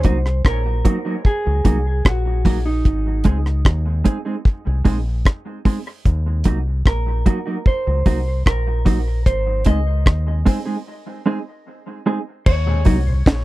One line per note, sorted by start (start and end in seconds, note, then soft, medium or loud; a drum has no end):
0.00 0.45 C5 loud
0.00 closed hi-hat medium
0.04 0.42 C2 medium
0.04 0.16 F#3 medium
0.04 0.16 A#3 medium
0.04 0.17 D#4 loud
0.04 0.17 F#4 loud
0.04 kick medium
0.26 cross-stick medium
0.45 0.81 A#1 medium
0.45 1.26 A#4 medium
0.45 kick loud
0.45 cross-stick loud
0.85 0.96 F#3 medium
0.85 0.97 A#3 medium
0.85 0.97 D#4 loud
0.85 0.97 F#4 medium
0.85 kick medium
0.85 closed hi-hat medium
1.05 1.15 F#3 soft
1.05 1.14 A#3 soft
1.05 1.14 D#4 soft
1.05 1.14 F#4 soft
1.25 2.08 G#4 loud
1.25 kick loud
1.47 1.64 C#2 medium
1.65 2.02 C2 medium
1.65 1.76 F#3 medium
1.65 1.77 A#3 medium
1.65 1.77 D#4 medium
1.65 1.77 F#4 medium
1.65 kick medium
1.65 closed hi-hat medium
2.05 2.81 A#1 medium
2.05 2.65 F#4 medium
2.05 kick loud
2.05 cross-stick loud
2.45 2.57 F#3 medium
2.45 2.57 A#3 medium
2.45 2.57 D#4 medium
2.45 2.58 F#4 loud
2.45 kick medium
2.45 open hi-hat medium
2.66 5.02 D#4 medium
2.85 3.22 G#1 medium
2.85 kick loud
2.85 hi-hat pedal medium
3.24 3.62 C#2 medium
3.24 3.37 G#3 medium
3.24 3.37 C4 medium
3.24 3.37 D#4 medium
3.24 3.37 G#4 loud
3.24 kick medium
3.24 closed hi-hat medium
3.46 cross-stick medium
3.65 4.02 D#2 loud
3.65 kick loud
3.65 cross-stick loud
4.04 4.17 G#3 medium
4.04 4.17 C4 medium
4.04 4.17 D#4 loud
4.04 4.17 G#4 loud
4.04 kick medium
4.04 closed hi-hat medium
4.25 4.35 G#3 soft
4.25 4.35 C4 soft
4.25 4.35 D#4 medium
4.25 4.34 G#4 medium
4.45 kick loud
4.67 4.84 C2 medium
4.85 5.22 A#1 medium
4.85 4.97 G#3 medium
4.85 4.97 C4 medium
4.85 4.97 D#4 medium
4.85 4.97 G#4 medium
4.85 kick medium
4.85 open hi-hat medium
5.25 kick loud
5.25 cross-stick loud
5.25 hi-hat pedal medium
5.65 5.77 G#3 medium
5.65 5.77 C4 medium
5.65 5.78 D#4 medium
5.65 5.78 G#4 medium
5.65 kick medium
5.65 open hi-hat medium
6.05 6.42 D#2 loud
6.05 kick loud
6.05 hi-hat pedal medium
6.44 6.82 C2 medium
6.44 6.57 F#3 medium
6.44 6.57 A#3 medium
6.44 6.58 D#4 medium
6.44 6.58 F#4 medium
6.44 kick medium
6.44 closed hi-hat medium
6.86 7.22 A#1 medium
6.86 7.67 A#4 medium
6.86 kick loud
6.86 cross-stick loud
7.26 7.37 F#3 medium
7.26 7.38 A#3 medium
7.26 7.38 D#4 medium
7.26 7.38 F#4 loud
7.26 kick medium
7.26 closed hi-hat medium
7.46 7.56 F#3 soft
7.46 7.56 A#3 soft
7.46 7.55 D#4 medium
7.46 7.55 F#4 medium
7.66 8.46 C5 medium
7.66 kick loud
7.87 8.05 C#2 medium
8.06 8.43 C2 medium
8.06 8.18 F#3 medium
8.06 8.18 A#3 medium
8.06 8.18 D#4 medium
8.06 8.18 F#4 loud
8.06 kick medium
8.06 open hi-hat medium
8.46 9.22 A#1 medium
8.46 9.26 A#4 medium
8.46 kick medium
8.46 cross-stick loud
8.46 hi-hat pedal medium
8.85 8.97 F#3 medium
8.85 8.98 A#3 medium
8.85 8.98 D#4 loud
8.85 8.98 F#4 medium
8.85 kick medium
8.85 open hi-hat medium
9.26 9.63 G#1 medium
9.26 9.63 C5 medium
9.26 kick loud
9.26 hi-hat pedal medium
9.65 10.03 C#2 medium
9.65 9.78 G#3 medium
9.65 9.78 C4 medium
9.65 9.78 D#4 medium
9.65 9.78 G#4 medium
9.65 10.43 D#5 medium
9.65 kick medium
9.65 closed hi-hat medium
10.06 10.43 D#2 medium
10.06 kick loud
10.06 cross-stick loud
10.46 10.58 G#3 medium
10.46 10.58 C4 medium
10.46 10.58 D#4 medium
10.46 10.58 G#4 medium
10.46 kick medium
10.46 open hi-hat medium
10.66 10.76 G#3 soft
10.66 10.75 C4 soft
10.66 10.75 D#4 soft
10.66 10.75 G#4 medium
11.26 11.38 G#3 medium
11.26 11.38 C4 medium
11.26 11.38 D#4 medium
11.26 11.38 G#4 medium
12.06 12.18 G#3 medium
12.06 12.18 C4 medium
12.06 12.18 D#4 medium
12.06 12.18 G#4 medium
12.46 12.83 D#2 loud
12.46 13.22 C#5 loud
12.46 kick loud
12.46 crash loud
12.66 12.76 D#2 medium
12.66 12.76 A#2 medium
12.85 13.23 C2 medium
12.85 12.97 F#3 medium
12.85 12.96 F#3 medium
12.85 12.98 A#3 medium
12.85 12.96 A#3 medium
12.85 12.98 D#4 loud
12.85 12.96 D#4 medium
12.85 12.98 F#4 medium
12.85 kick loud
12.85 open hi-hat medium
13.06 13.16 D#2 medium
13.06 13.16 A#2 medium
13.26 13.45 A#1 medium
13.26 kick loud
13.26 snare loud
13.26 hi-hat pedal medium